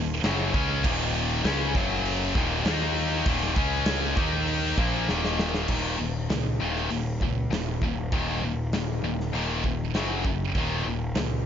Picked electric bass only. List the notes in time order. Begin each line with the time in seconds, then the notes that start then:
Already playing: D#1
0.23 F#1
0.54 C#2
0.84 D#1
1.44 C#2
1.74 F#1
2.35 D#1
2.65 D#2
3.26 D#1
3.56 C#2
4.16 D#2
4.78 A#1
5.09 D#1
5.68 D#1
6.00 D#1
6.31 C#2
6.60 D#1
6.90 D#1
7.21 C#2
7.51 D#1
7.82 D#1
8.12 D#1
8.42 D#1
8.72 D#1
9.03 D#1
9.34 D#1
9.94 F#1
10.54 D#1
10.85 D#1
11.15 C#2